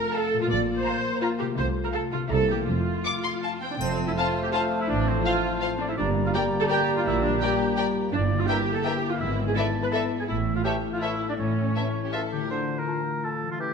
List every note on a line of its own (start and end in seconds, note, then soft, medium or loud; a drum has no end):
0.00 2.24 F3 medium
0.00 0.48 A3 medium
0.00 0.46 C4 soft
0.00 0.41 F4 soft
0.00 1.56 F4 medium
0.00 0.51 A4 soft
0.00 0.15 A#4 medium
0.14 0.42 A4 medium
0.14 0.43 F5 medium
0.14 0.42 A5 medium
0.33 1.51 A#2 medium
0.38 1.54 A#3 soft
0.38 0.51 F4 medium
0.42 1.49 F4 soft
0.47 1.58 A#4 soft
0.47 0.58 D5 medium
0.51 0.80 A#1 medium
0.51 0.79 A#2 medium
0.51 1.59 A#3 medium
0.76 1.21 C5 medium
0.86 1.14 F5 medium
0.86 1.13 A#5 medium
1.22 1.29 F4 medium
1.22 1.50 F5 medium
1.22 1.49 A#5 medium
1.39 2.12 C3 soft
1.39 1.47 G4 medium
1.45 2.26 A3 soft
1.50 2.28 F4 soft
1.57 1.87 C2 medium
1.57 1.87 C3 medium
1.57 2.14 A3 medium
1.57 2.14 F4 medium
1.57 1.65 C5 medium
1.84 1.88 A#4 medium
1.94 2.01 A4 medium
1.94 2.21 F5 medium
1.94 2.22 A5 medium
2.13 2.61 C3 soft
2.13 2.20 F4 medium
2.18 2.64 A#3 soft
2.22 2.66 D4 soft
2.27 2.61 C2 medium
2.27 2.68 E4 soft
2.27 2.49 A4 medium
2.27 2.59 D5 soft
2.27 2.58 E5 soft
2.31 2.61 C3 medium
2.31 2.69 A#3 soft
2.31 2.68 E4 soft
2.31 2.59 A#5 soft
2.50 3.80 F3 soft
2.50 2.69 G4 medium
2.56 3.98 A3 soft
2.61 4.17 C4 soft
2.65 2.98 F1 soft
2.65 2.98 F2 medium
2.65 3.62 A3 soft
2.65 4.34 F4 soft
2.65 3.62 F4 soft
2.69 3.60 F4 medium
3.05 3.34 F5 soft
3.05 3.13 D6 medium
3.24 3.32 C6 soft
3.43 3.71 F5 soft
3.43 3.51 A5 soft
3.61 3.65 C4 soft
3.61 3.66 C5 soft
3.61 3.80 G5 soft
3.71 3.75 D4 soft
3.71 3.75 D5 soft
3.80 4.11 F1 medium
3.80 4.11 F2 medium
3.80 5.07 F3 medium
3.80 5.93 A3 medium
3.80 5.94 A3 medium
3.80 4.07 C4 medium
3.80 5.94 F4 medium
3.80 5.93 C5 medium
3.80 3.93 C5 medium
3.80 5.93 A5 medium
3.80 triangle soft
3.99 5.25 A3 soft
4.07 4.11 E4 medium
4.07 4.12 E5 medium
4.16 5.43 C4 soft
4.16 4.43 F4 medium
4.16 4.27 C5 soft
4.16 4.29 F5 medium
4.16 4.27 F5 soft
4.16 4.26 A5 soft
4.35 4.71 F4 soft
4.43 4.47 G4 medium
4.43 4.49 G5 medium
4.52 4.60 F4 medium
4.52 5.99 A4 soft
4.52 4.63 C5 soft
4.52 4.62 F5 soft
4.52 4.80 F5 medium
4.52 4.62 A5 soft
4.72 5.62 F4 soft
4.80 4.89 E4 medium
4.80 4.85 E5 medium
4.88 5.19 A1 medium
4.88 5.99 A2 medium
4.88 5.20 A2 medium
4.88 5.07 D4 medium
4.88 5.10 D5 medium
5.06 5.99 F3 soft
5.06 5.25 C4 medium
5.06 5.25 C5 medium
5.24 5.99 A3 soft
5.24 5.60 F4 medium
5.24 5.35 C5 medium
5.24 5.60 F5 medium
5.24 5.34 F5 soft
5.44 5.80 C4 soft
5.62 5.99 F4 soft
5.62 5.70 C5 soft
5.62 5.70 F5 soft
5.79 5.99 C4 soft
5.79 5.82 D4 medium
5.79 5.84 D5 medium
5.89 5.92 E4 medium
5.89 5.97 E5 medium
5.97 6.28 G1 medium
5.97 6.28 G2 medium
5.97 7.08 G2 medium
5.97 8.09 G3 medium
5.97 8.09 A#3 medium
5.97 6.06 D4 medium
5.97 8.09 G4 medium
5.97 6.09 D5 medium
5.97 8.09 D5 medium
5.97 8.10 A#5 medium
6.17 7.08 D3 soft
6.26 6.29 F4 medium
6.26 6.30 F5 medium
6.34 7.41 A#3 soft
6.34 6.42 G4 medium
6.34 6.43 A#4 medium
6.34 6.42 D5 medium
6.34 6.43 G5 soft
6.34 6.47 G5 medium
6.52 6.88 D4 soft
6.61 6.64 A4 medium
6.61 6.66 A5 medium
6.69 6.96 G4 medium
6.69 7.77 G4 soft
6.69 6.77 A#4 soft
6.69 6.77 D5 soft
6.69 6.82 G5 medium
6.69 6.79 G5 soft
6.89 7.60 D4 soft
6.96 7.05 F4 medium
6.96 7.09 F5 medium
7.06 7.36 A#1 medium
7.06 7.36 A#2 medium
7.06 8.15 A#2 medium
7.06 7.23 E4 medium
7.06 7.24 E5 medium
7.23 9.23 G3 soft
7.23 7.41 D4 medium
7.23 7.32 D5 medium
7.41 8.49 A#3 soft
7.41 7.76 G4 medium
7.41 7.52 A#4 medium
7.41 7.51 D5 medium
7.41 7.49 G5 soft
7.41 7.76 G5 medium
7.61 7.95 D4 soft
7.77 9.23 G4 soft
7.77 7.86 A#4 medium
7.77 7.86 D5 medium
7.77 7.85 G5 soft
7.96 10.30 D4 soft
8.13 8.43 G1 medium
8.13 8.43 G2 medium
8.13 9.22 G2 medium
8.13 9.19 A#3 medium
8.13 8.21 D4 medium
8.13 10.25 E4 medium
8.13 8.42 D5 medium
8.32 9.22 D3 soft
8.39 8.48 F4 medium
8.39 8.48 F5 medium
8.48 8.62 E3 soft
8.48 9.23 A#3 soft
8.48 8.75 G4 medium
8.48 8.58 A#4 soft
8.48 8.61 E5 medium
8.48 8.58 E5 soft
8.48 8.57 G5 medium
8.48 8.61 G5 medium
8.48 8.56 A#5 soft
8.69 9.03 E4 soft
8.75 8.84 A4 medium
8.75 8.80 A5 medium
8.83 8.98 E3 soft
8.83 9.11 G4 medium
8.83 9.22 A#4 soft
8.83 8.94 A#4 soft
8.83 8.97 E5 soft
8.83 8.93 E5 soft
8.83 8.97 G5 medium
8.83 8.93 G5 soft
8.83 8.91 A#5 soft
9.04 9.75 E4 soft
9.11 9.20 F4 medium
9.11 9.15 F5 medium
9.20 9.50 G#1 medium
9.20 9.50 G#2 medium
9.20 10.30 G#2 medium
9.20 10.28 B3 soft
9.20 9.47 E4 medium
9.20 9.33 E5 medium
9.40 10.31 G#3 soft
9.47 9.51 G#4 medium
9.47 9.59 G#5 soft
9.55 9.70 E3 soft
9.55 10.30 B3 soft
9.55 9.63 A4 medium
9.55 9.65 B4 soft
9.55 9.65 D5 soft
9.55 9.69 E5 soft
9.55 9.66 E5 soft
9.55 9.84 A5 medium
9.55 9.64 B5 soft
9.76 10.11 E4 soft
9.83 9.87 B4 medium
9.83 9.93 B5 soft
9.91 10.06 E3 soft
9.91 9.99 A4 medium
9.91 10.01 B4 soft
9.91 10.01 D5 soft
9.91 10.31 D5 soft
9.91 10.04 E5 soft
9.91 10.02 E5 soft
9.91 10.06 A5 medium
9.91 9.98 B5 soft
10.12 10.83 E4 soft
10.19 10.28 G#4 medium
10.19 10.24 G#5 medium
10.27 10.59 A1 medium
10.27 10.59 A2 soft
10.27 11.38 A2 soft
10.27 12.31 A3 medium
10.27 10.35 E4 medium
10.27 12.28 E4 soft
10.27 10.56 E5 medium
10.48 11.57 E3 soft
10.56 10.64 F4 medium
10.56 10.60 F5 soft
10.64 10.78 E3 soft
10.64 11.75 A3 soft
10.64 10.73 G4 medium
10.64 10.73 A4 soft
10.64 10.73 C#5 soft
10.64 10.77 E5 soft
10.64 10.73 E5 soft
10.64 10.77 G5 medium
10.64 10.72 A5 soft
10.84 11.20 E4 soft
10.92 11.01 F4 medium
10.92 10.97 F5 soft
11.01 11.15 E3 soft
11.01 11.29 E4 medium
11.01 11.10 A4 soft
11.01 11.10 C#5 soft
11.01 11.28 E5 soft
11.01 11.15 E5 soft
11.01 11.11 E5 soft
11.01 11.08 A5 soft
11.21 11.94 E4 soft
11.28 11.32 D4 soft
11.28 11.34 D5 soft
11.38 11.69 A1 soft
11.38 11.70 A2 soft
11.38 12.52 A2 soft
11.38 12.12 C#4 soft
11.38 12.12 C#5 soft
11.58 12.53 E3 soft
11.76 11.89 E3 soft
11.76 11.84 E4 soft
11.76 11.89 E5 soft
11.76 11.84 E5 soft
11.76 11.83 A5 soft
11.95 12.31 E4 soft
12.03 12.13 G4 soft
12.13 12.27 E3 soft
12.13 12.21 F4 soft
12.13 12.41 A4 soft
12.13 12.21 E5 soft
12.13 12.52 E5 soft
12.13 12.27 E5 soft
12.13 12.21 A5 soft
12.32 13.52 D3 soft
12.32 12.52 E4 soft
12.32 12.50 G4 medium
12.37 13.46 A3 soft
12.42 13.57 F4 soft
12.42 12.51 A#4 soft
12.46 13.59 D5 soft
12.50 12.81 D3 medium
12.50 13.74 A3 soft
12.50 13.56 F4 soft
12.50 12.80 C5 medium
12.79 13.26 A#4 medium
12.87 13.01 F4 soft
12.87 12.94 A5 soft
13.23 13.36 F4 soft
13.23 13.51 A4 medium
13.23 13.31 A5 soft
13.43 13.74 E3 soft
13.47 13.74 A3 soft
13.51 13.74 E4 soft
13.51 13.60 F4 medium
13.56 13.74 E3 medium
13.56 13.74 C#5 soft
13.60 13.74 C#4 soft
13.60 13.74 G4 medium